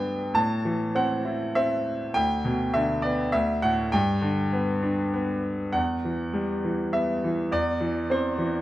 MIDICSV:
0, 0, Header, 1, 2, 480
1, 0, Start_track
1, 0, Key_signature, 1, "major"
1, 0, Tempo, 595829
1, 288, Time_signature, 3, 2, 24, 8
1, 3643, Tempo, 612245
1, 4603, Tempo, 589391
1, 6939, End_track
2, 0, Start_track
2, 0, Title_t, "Grand piano"
2, 0, Program_c, 0, 0
2, 0, Control_c, 0, 64, 127
2, 0, Note_on_c, 0, 43, 49
2, 0, Note_on_c, 0, 50, 41
2, 0, Note_on_c, 0, 59, 38
2, 0, Note_on_c, 0, 62, 37
2, 0, Note_on_c, 0, 79, 72
2, 0, Note_on_c, 0, 81, 72
2, 0, Note_on_c, 0, 83, 77
2, 258, Note_off_c, 0, 43, 0
2, 269, Note_off_c, 0, 59, 0
2, 270, Note_off_c, 0, 62, 0
2, 273, Note_on_c, 0, 45, 50
2, 280, Note_off_c, 0, 81, 0
2, 280, Note_on_c, 0, 81, 75
2, 297, Note_off_c, 0, 50, 0
2, 297, Control_c, 0, 64, 0
2, 299, Note_off_c, 0, 79, 0
2, 305, Note_off_c, 0, 83, 0
2, 455, Control_c, 0, 64, 127
2, 525, Note_on_c, 0, 52, 46
2, 766, Note_on_c, 0, 60, 44
2, 771, Note_on_c, 0, 78, 69
2, 785, Note_off_c, 0, 81, 0
2, 1008, Note_on_c, 0, 64, 43
2, 1243, Note_off_c, 0, 60, 0
2, 1252, Note_on_c, 0, 76, 76
2, 1255, Note_on_c, 0, 60, 42
2, 1271, Note_off_c, 0, 78, 0
2, 1465, Note_off_c, 0, 52, 0
2, 1695, Note_off_c, 0, 45, 0
2, 1709, Note_off_c, 0, 64, 0
2, 1719, Note_off_c, 0, 60, 0
2, 1726, Note_on_c, 0, 79, 82
2, 1737, Note_on_c, 0, 38, 52
2, 1744, Control_c, 0, 64, 0
2, 1746, Note_off_c, 0, 76, 0
2, 1898, Control_c, 0, 64, 127
2, 1972, Note_on_c, 0, 47, 50
2, 2204, Note_on_c, 0, 76, 77
2, 2215, Note_on_c, 0, 50, 50
2, 2217, Note_off_c, 0, 79, 0
2, 2435, Note_on_c, 0, 74, 62
2, 2451, Note_off_c, 0, 76, 0
2, 2453, Note_on_c, 0, 59, 42
2, 2657, Note_off_c, 0, 38, 0
2, 2664, Note_off_c, 0, 47, 0
2, 2674, Note_off_c, 0, 50, 0
2, 2677, Note_on_c, 0, 76, 78
2, 2682, Note_off_c, 0, 59, 0
2, 2687, Note_off_c, 0, 74, 0
2, 2691, Note_on_c, 0, 38, 55
2, 2696, Control_c, 0, 64, 0
2, 2817, Control_c, 0, 64, 127
2, 2920, Note_on_c, 0, 78, 77
2, 2928, Note_off_c, 0, 76, 0
2, 2928, Note_on_c, 0, 45, 45
2, 3143, Note_off_c, 0, 78, 0
2, 3151, Note_off_c, 0, 38, 0
2, 3157, Note_off_c, 0, 45, 0
2, 3159, Note_on_c, 0, 79, 75
2, 3169, Note_on_c, 0, 43, 59
2, 3171, Control_c, 0, 64, 0
2, 3335, Control_c, 0, 64, 127
2, 3397, Note_on_c, 0, 50, 50
2, 3648, Note_on_c, 0, 59, 55
2, 3882, Note_on_c, 0, 62, 47
2, 4113, Note_off_c, 0, 59, 0
2, 4125, Note_on_c, 0, 59, 50
2, 4332, Note_off_c, 0, 79, 0
2, 4334, Note_off_c, 0, 50, 0
2, 4575, Note_off_c, 0, 43, 0
2, 4581, Note_off_c, 0, 62, 0
2, 4586, Note_on_c, 0, 78, 68
2, 4589, Note_off_c, 0, 59, 0
2, 4597, Note_on_c, 0, 40, 46
2, 4614, Control_c, 0, 64, 0
2, 4767, Control_c, 0, 64, 127
2, 4848, Note_on_c, 0, 52, 39
2, 5081, Note_on_c, 0, 55, 42
2, 5322, Note_off_c, 0, 52, 0
2, 5334, Note_on_c, 0, 52, 39
2, 5567, Note_on_c, 0, 76, 69
2, 5570, Note_on_c, 0, 59, 41
2, 5592, Note_off_c, 0, 78, 0
2, 5808, Note_off_c, 0, 52, 0
2, 5820, Note_on_c, 0, 52, 44
2, 6018, Note_off_c, 0, 40, 0
2, 6019, Note_off_c, 0, 76, 0
2, 6022, Note_off_c, 0, 55, 0
2, 6038, Note_off_c, 0, 59, 0
2, 6044, Note_on_c, 0, 40, 51
2, 6049, Note_off_c, 0, 52, 0
2, 6051, Note_on_c, 0, 74, 72
2, 6064, Control_c, 0, 64, 0
2, 6216, Control_c, 0, 64, 127
2, 6279, Note_on_c, 0, 52, 45
2, 6520, Note_on_c, 0, 60, 47
2, 6531, Note_on_c, 0, 72, 62
2, 6542, Note_off_c, 0, 74, 0
2, 6738, Note_off_c, 0, 52, 0
2, 6751, Note_on_c, 0, 52, 45
2, 6939, Note_off_c, 0, 40, 0
2, 6939, Note_off_c, 0, 52, 0
2, 6939, Note_off_c, 0, 60, 0
2, 6939, Note_off_c, 0, 72, 0
2, 6939, End_track
0, 0, End_of_file